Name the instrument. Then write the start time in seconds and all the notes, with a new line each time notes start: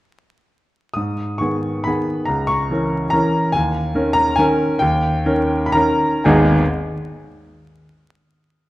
grand piano
0.94 G#2 D#6
1.38 D#3 B3 G#4 C#6
1.84 D#3 B3 G#4 B5
2.26 C#2 A#5
2.47 C#6
2.71 E3 C#4 A#4
3.10 E3 C#4 A#4 A#5
3.52 D#2 G#5
3.95 D#3 C#4 A#4
4.13 A#5
4.36 D#3 C#4 A#4 G#5
4.79 D#2 G5
5.26 D#3 C#4 A#4
5.66 B5
5.72 D#3 C#4 A#4 A#5
6.24 G#1 D#2 G#3 B3 D#4 G#4 G#5